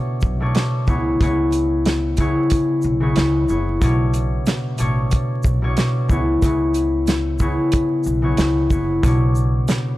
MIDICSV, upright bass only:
0, 0, Header, 1, 2, 480
1, 0, Start_track
1, 0, Tempo, 652174
1, 888, Time_signature, 4, 2, 24, 8
1, 7343, End_track
2, 0, Start_track
2, 0, Title_t, "Upright bass"
2, 0, Program_c, 0, 32
2, 168, Note_on_c, 0, 35, 93
2, 373, Note_off_c, 0, 35, 0
2, 648, Note_on_c, 0, 37, 103
2, 853, Note_off_c, 0, 37, 0
2, 891, Note_on_c, 0, 37, 104
2, 1717, Note_off_c, 0, 37, 0
2, 2093, Note_on_c, 0, 35, 87
2, 2295, Note_off_c, 0, 35, 0
2, 2333, Note_on_c, 0, 37, 105
2, 2535, Note_off_c, 0, 37, 0
2, 2574, Note_on_c, 0, 30, 88
2, 2776, Note_off_c, 0, 30, 0
2, 2811, Note_on_c, 0, 35, 105
2, 3219, Note_off_c, 0, 35, 0
2, 3533, Note_on_c, 0, 33, 91
2, 3736, Note_off_c, 0, 33, 0
2, 4009, Note_on_c, 0, 35, 92
2, 4213, Note_off_c, 0, 35, 0
2, 4489, Note_on_c, 0, 37, 103
2, 4693, Note_off_c, 0, 37, 0
2, 4730, Note_on_c, 0, 37, 104
2, 5557, Note_off_c, 0, 37, 0
2, 5935, Note_on_c, 0, 35, 86
2, 6137, Note_off_c, 0, 35, 0
2, 6173, Note_on_c, 0, 37, 101
2, 6376, Note_off_c, 0, 37, 0
2, 6408, Note_on_c, 0, 30, 91
2, 6613, Note_off_c, 0, 30, 0
2, 6651, Note_on_c, 0, 35, 110
2, 7059, Note_off_c, 0, 35, 0
2, 7343, End_track
0, 0, End_of_file